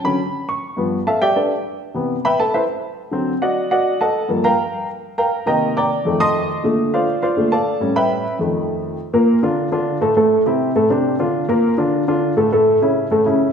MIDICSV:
0, 0, Header, 1, 2, 480
1, 0, Start_track
1, 0, Tempo, 293686
1, 1273, Time_signature, 4, 2, 24, 8
1, 22104, End_track
2, 0, Start_track
2, 0, Title_t, "Grand piano"
2, 0, Program_c, 0, 0
2, 69, Note_on_c, 0, 50, 47
2, 77, Note_on_c, 0, 54, 44
2, 78, Note_on_c, 0, 83, 91
2, 80, Note_on_c, 0, 61, 53
2, 287, Note_off_c, 0, 50, 0
2, 291, Note_off_c, 0, 54, 0
2, 293, Note_off_c, 0, 61, 0
2, 745, Note_off_c, 0, 83, 0
2, 795, Note_on_c, 0, 85, 81
2, 1241, Note_off_c, 0, 85, 0
2, 1254, Note_on_c, 0, 43, 54
2, 1263, Note_on_c, 0, 53, 52
2, 1272, Note_on_c, 0, 59, 62
2, 1582, Note_off_c, 0, 43, 0
2, 1587, Note_off_c, 0, 53, 0
2, 1592, Note_off_c, 0, 59, 0
2, 1748, Note_on_c, 0, 81, 82
2, 1754, Note_on_c, 0, 76, 66
2, 1755, Note_on_c, 0, 69, 64
2, 1755, Note_on_c, 0, 77, 66
2, 1971, Note_off_c, 0, 76, 0
2, 1983, Note_off_c, 0, 81, 0
2, 1987, Note_off_c, 0, 69, 0
2, 1987, Note_off_c, 0, 77, 0
2, 1987, Note_on_c, 0, 79, 94
2, 1993, Note_on_c, 0, 74, 77
2, 1994, Note_on_c, 0, 67, 75
2, 1996, Note_on_c, 0, 76, 76
2, 2198, Note_off_c, 0, 74, 0
2, 2222, Note_on_c, 0, 74, 59
2, 2223, Note_off_c, 0, 79, 0
2, 2226, Note_off_c, 0, 67, 0
2, 2227, Note_off_c, 0, 76, 0
2, 2228, Note_on_c, 0, 62, 52
2, 2228, Note_on_c, 0, 71, 48
2, 2230, Note_on_c, 0, 69, 50
2, 2460, Note_off_c, 0, 74, 0
2, 2463, Note_off_c, 0, 62, 0
2, 2463, Note_off_c, 0, 71, 0
2, 2464, Note_off_c, 0, 69, 0
2, 3177, Note_on_c, 0, 48, 57
2, 3189, Note_on_c, 0, 52, 50
2, 3195, Note_on_c, 0, 59, 62
2, 3503, Note_off_c, 0, 48, 0
2, 3509, Note_off_c, 0, 52, 0
2, 3513, Note_off_c, 0, 59, 0
2, 3675, Note_on_c, 0, 83, 97
2, 3681, Note_on_c, 0, 79, 74
2, 3683, Note_on_c, 0, 71, 77
2, 3683, Note_on_c, 0, 76, 77
2, 3906, Note_off_c, 0, 83, 0
2, 3909, Note_off_c, 0, 79, 0
2, 3910, Note_off_c, 0, 71, 0
2, 3910, Note_off_c, 0, 76, 0
2, 3916, Note_on_c, 0, 81, 96
2, 3922, Note_on_c, 0, 69, 75
2, 4147, Note_off_c, 0, 81, 0
2, 4150, Note_off_c, 0, 69, 0
2, 4153, Note_on_c, 0, 76, 77
2, 4160, Note_on_c, 0, 64, 66
2, 4160, Note_on_c, 0, 72, 68
2, 4162, Note_on_c, 0, 71, 67
2, 4296, Note_off_c, 0, 76, 0
2, 4301, Note_off_c, 0, 64, 0
2, 4301, Note_off_c, 0, 72, 0
2, 4303, Note_off_c, 0, 71, 0
2, 5091, Note_on_c, 0, 50, 55
2, 5103, Note_on_c, 0, 54, 51
2, 5112, Note_on_c, 0, 60, 66
2, 5419, Note_off_c, 0, 50, 0
2, 5425, Note_off_c, 0, 54, 0
2, 5430, Note_off_c, 0, 60, 0
2, 5589, Note_on_c, 0, 78, 76
2, 5594, Note_on_c, 0, 74, 64
2, 5595, Note_on_c, 0, 75, 60
2, 5598, Note_on_c, 0, 66, 61
2, 6035, Note_off_c, 0, 78, 0
2, 6038, Note_off_c, 0, 74, 0
2, 6038, Note_off_c, 0, 75, 0
2, 6040, Note_off_c, 0, 66, 0
2, 6067, Note_on_c, 0, 78, 79
2, 6074, Note_on_c, 0, 75, 66
2, 6075, Note_on_c, 0, 74, 66
2, 6077, Note_on_c, 0, 66, 64
2, 6514, Note_off_c, 0, 78, 0
2, 6517, Note_off_c, 0, 75, 0
2, 6518, Note_off_c, 0, 74, 0
2, 6519, Note_off_c, 0, 66, 0
2, 6550, Note_on_c, 0, 81, 83
2, 6557, Note_on_c, 0, 75, 66
2, 6559, Note_on_c, 0, 78, 66
2, 6560, Note_on_c, 0, 69, 66
2, 6999, Note_off_c, 0, 75, 0
2, 6999, Note_off_c, 0, 78, 0
2, 7003, Note_on_c, 0, 43, 57
2, 7011, Note_on_c, 0, 53, 51
2, 7023, Note_on_c, 0, 58, 64
2, 7218, Note_off_c, 0, 81, 0
2, 7223, Note_off_c, 0, 69, 0
2, 7259, Note_on_c, 0, 82, 93
2, 7265, Note_on_c, 0, 70, 72
2, 7267, Note_on_c, 0, 77, 76
2, 7269, Note_on_c, 0, 79, 70
2, 7333, Note_off_c, 0, 43, 0
2, 7337, Note_off_c, 0, 53, 0
2, 7344, Note_off_c, 0, 58, 0
2, 7931, Note_off_c, 0, 82, 0
2, 7934, Note_off_c, 0, 70, 0
2, 7935, Note_off_c, 0, 77, 0
2, 7936, Note_off_c, 0, 79, 0
2, 8466, Note_on_c, 0, 82, 80
2, 8469, Note_on_c, 0, 79, 67
2, 8472, Note_on_c, 0, 70, 66
2, 8475, Note_on_c, 0, 77, 65
2, 8911, Note_off_c, 0, 82, 0
2, 8913, Note_off_c, 0, 79, 0
2, 8914, Note_off_c, 0, 70, 0
2, 8915, Note_off_c, 0, 77, 0
2, 8924, Note_on_c, 0, 48, 57
2, 8934, Note_on_c, 0, 51, 50
2, 8937, Note_on_c, 0, 82, 84
2, 8942, Note_on_c, 0, 58, 58
2, 8943, Note_on_c, 0, 75, 68
2, 8945, Note_on_c, 0, 70, 72
2, 8945, Note_on_c, 0, 79, 70
2, 9385, Note_off_c, 0, 82, 0
2, 9389, Note_off_c, 0, 75, 0
2, 9390, Note_off_c, 0, 70, 0
2, 9390, Note_off_c, 0, 79, 0
2, 9428, Note_on_c, 0, 86, 90
2, 9436, Note_on_c, 0, 82, 73
2, 9437, Note_on_c, 0, 79, 72
2, 9439, Note_on_c, 0, 74, 75
2, 9616, Note_off_c, 0, 48, 0
2, 9621, Note_off_c, 0, 51, 0
2, 9625, Note_off_c, 0, 58, 0
2, 9875, Note_off_c, 0, 82, 0
2, 9891, Note_on_c, 0, 41, 56
2, 9901, Note_on_c, 0, 51, 50
2, 9911, Note_on_c, 0, 57, 61
2, 10094, Note_off_c, 0, 86, 0
2, 10098, Note_off_c, 0, 79, 0
2, 10099, Note_off_c, 0, 74, 0
2, 10138, Note_on_c, 0, 87, 115
2, 10143, Note_on_c, 0, 84, 93
2, 10144, Note_on_c, 0, 75, 91
2, 10146, Note_on_c, 0, 81, 89
2, 10578, Note_off_c, 0, 41, 0
2, 10584, Note_off_c, 0, 51, 0
2, 10589, Note_off_c, 0, 57, 0
2, 10808, Note_off_c, 0, 87, 0
2, 10810, Note_off_c, 0, 84, 0
2, 10811, Note_off_c, 0, 75, 0
2, 10812, Note_off_c, 0, 81, 0
2, 10843, Note_on_c, 0, 46, 56
2, 10853, Note_on_c, 0, 50, 52
2, 10866, Note_on_c, 0, 57, 61
2, 11338, Note_on_c, 0, 77, 74
2, 11346, Note_on_c, 0, 65, 57
2, 11346, Note_on_c, 0, 74, 59
2, 11347, Note_on_c, 0, 72, 60
2, 11533, Note_off_c, 0, 46, 0
2, 11539, Note_off_c, 0, 50, 0
2, 11545, Note_off_c, 0, 57, 0
2, 11783, Note_off_c, 0, 77, 0
2, 11788, Note_off_c, 0, 65, 0
2, 11788, Note_off_c, 0, 72, 0
2, 11788, Note_off_c, 0, 74, 0
2, 11808, Note_on_c, 0, 77, 70
2, 11817, Note_on_c, 0, 65, 58
2, 11817, Note_on_c, 0, 72, 61
2, 11818, Note_on_c, 0, 74, 60
2, 12041, Note_on_c, 0, 46, 53
2, 12046, Note_on_c, 0, 50, 47
2, 12056, Note_on_c, 0, 57, 58
2, 12257, Note_off_c, 0, 77, 0
2, 12262, Note_off_c, 0, 65, 0
2, 12263, Note_off_c, 0, 72, 0
2, 12263, Note_off_c, 0, 74, 0
2, 12264, Note_off_c, 0, 46, 0
2, 12267, Note_off_c, 0, 50, 0
2, 12272, Note_off_c, 0, 57, 0
2, 12291, Note_on_c, 0, 81, 90
2, 12298, Note_on_c, 0, 77, 66
2, 12299, Note_on_c, 0, 69, 68
2, 12301, Note_on_c, 0, 74, 70
2, 12743, Note_off_c, 0, 77, 0
2, 12744, Note_off_c, 0, 74, 0
2, 12751, Note_on_c, 0, 45, 57
2, 12764, Note_on_c, 0, 55, 52
2, 12772, Note_on_c, 0, 61, 60
2, 12962, Note_off_c, 0, 81, 0
2, 12966, Note_off_c, 0, 69, 0
2, 13011, Note_on_c, 0, 83, 95
2, 13013, Note_on_c, 0, 71, 79
2, 13014, Note_on_c, 0, 79, 78
2, 13016, Note_on_c, 0, 76, 77
2, 13445, Note_off_c, 0, 45, 0
2, 13453, Note_off_c, 0, 55, 0
2, 13456, Note_off_c, 0, 61, 0
2, 13681, Note_off_c, 0, 83, 0
2, 13683, Note_off_c, 0, 71, 0
2, 13683, Note_off_c, 0, 79, 0
2, 13684, Note_off_c, 0, 76, 0
2, 13717, Note_on_c, 0, 41, 57
2, 13727, Note_on_c, 0, 51, 48
2, 13737, Note_on_c, 0, 57, 57
2, 14637, Note_off_c, 0, 41, 0
2, 14642, Note_off_c, 0, 51, 0
2, 14647, Note_off_c, 0, 57, 0
2, 14929, Note_on_c, 0, 46, 78
2, 14932, Note_on_c, 0, 58, 78
2, 14938, Note_on_c, 0, 70, 78
2, 15325, Note_off_c, 0, 46, 0
2, 15327, Note_off_c, 0, 58, 0
2, 15330, Note_off_c, 0, 70, 0
2, 15409, Note_on_c, 0, 50, 68
2, 15419, Note_on_c, 0, 62, 63
2, 15423, Note_on_c, 0, 65, 69
2, 15805, Note_off_c, 0, 50, 0
2, 15811, Note_off_c, 0, 62, 0
2, 15813, Note_off_c, 0, 65, 0
2, 15886, Note_on_c, 0, 50, 68
2, 15892, Note_on_c, 0, 62, 69
2, 15896, Note_on_c, 0, 65, 70
2, 16284, Note_off_c, 0, 50, 0
2, 16288, Note_off_c, 0, 62, 0
2, 16290, Note_off_c, 0, 65, 0
2, 16365, Note_on_c, 0, 45, 74
2, 16366, Note_on_c, 0, 57, 73
2, 16374, Note_on_c, 0, 69, 76
2, 16566, Note_off_c, 0, 45, 0
2, 16567, Note_off_c, 0, 57, 0
2, 16572, Note_off_c, 0, 69, 0
2, 16611, Note_on_c, 0, 45, 70
2, 16617, Note_on_c, 0, 57, 74
2, 16621, Note_on_c, 0, 69, 76
2, 17008, Note_off_c, 0, 45, 0
2, 17011, Note_off_c, 0, 57, 0
2, 17013, Note_off_c, 0, 69, 0
2, 17093, Note_on_c, 0, 48, 63
2, 17101, Note_on_c, 0, 60, 64
2, 17106, Note_on_c, 0, 64, 64
2, 17489, Note_off_c, 0, 48, 0
2, 17494, Note_off_c, 0, 60, 0
2, 17497, Note_off_c, 0, 64, 0
2, 17578, Note_on_c, 0, 45, 69
2, 17582, Note_on_c, 0, 57, 72
2, 17586, Note_on_c, 0, 69, 70
2, 17775, Note_off_c, 0, 45, 0
2, 17778, Note_off_c, 0, 57, 0
2, 17780, Note_off_c, 0, 69, 0
2, 17810, Note_on_c, 0, 48, 68
2, 17812, Note_on_c, 0, 60, 68
2, 17822, Note_on_c, 0, 62, 70
2, 18209, Note_off_c, 0, 48, 0
2, 18210, Note_off_c, 0, 60, 0
2, 18216, Note_off_c, 0, 62, 0
2, 18294, Note_on_c, 0, 50, 65
2, 18299, Note_on_c, 0, 62, 66
2, 18303, Note_on_c, 0, 65, 66
2, 18691, Note_off_c, 0, 50, 0
2, 18695, Note_off_c, 0, 62, 0
2, 18697, Note_off_c, 0, 65, 0
2, 18770, Note_on_c, 0, 46, 82
2, 18778, Note_on_c, 0, 58, 78
2, 18784, Note_on_c, 0, 70, 82
2, 19170, Note_off_c, 0, 46, 0
2, 19174, Note_off_c, 0, 58, 0
2, 19178, Note_off_c, 0, 70, 0
2, 19249, Note_on_c, 0, 50, 71
2, 19257, Note_on_c, 0, 62, 67
2, 19259, Note_on_c, 0, 65, 67
2, 19650, Note_off_c, 0, 50, 0
2, 19654, Note_off_c, 0, 62, 0
2, 19656, Note_off_c, 0, 65, 0
2, 19740, Note_on_c, 0, 50, 72
2, 19745, Note_on_c, 0, 62, 68
2, 19750, Note_on_c, 0, 65, 74
2, 20137, Note_off_c, 0, 50, 0
2, 20140, Note_off_c, 0, 62, 0
2, 20143, Note_off_c, 0, 65, 0
2, 20212, Note_on_c, 0, 45, 77
2, 20219, Note_on_c, 0, 57, 75
2, 20226, Note_on_c, 0, 69, 75
2, 20416, Note_off_c, 0, 45, 0
2, 20420, Note_off_c, 0, 57, 0
2, 20424, Note_off_c, 0, 69, 0
2, 20467, Note_on_c, 0, 45, 72
2, 20469, Note_on_c, 0, 57, 75
2, 20478, Note_on_c, 0, 69, 75
2, 20862, Note_off_c, 0, 45, 0
2, 20863, Note_off_c, 0, 57, 0
2, 20868, Note_off_c, 0, 69, 0
2, 20951, Note_on_c, 0, 49, 63
2, 20955, Note_on_c, 0, 61, 65
2, 20962, Note_on_c, 0, 64, 63
2, 21345, Note_off_c, 0, 49, 0
2, 21347, Note_off_c, 0, 61, 0
2, 21352, Note_off_c, 0, 64, 0
2, 21430, Note_on_c, 0, 45, 72
2, 21436, Note_on_c, 0, 57, 70
2, 21437, Note_on_c, 0, 69, 70
2, 21628, Note_off_c, 0, 45, 0
2, 21631, Note_off_c, 0, 57, 0
2, 21632, Note_off_c, 0, 69, 0
2, 21669, Note_on_c, 0, 49, 69
2, 21670, Note_on_c, 0, 61, 65
2, 21675, Note_on_c, 0, 64, 65
2, 22065, Note_off_c, 0, 49, 0
2, 22065, Note_off_c, 0, 61, 0
2, 22069, Note_off_c, 0, 64, 0
2, 22104, End_track
0, 0, End_of_file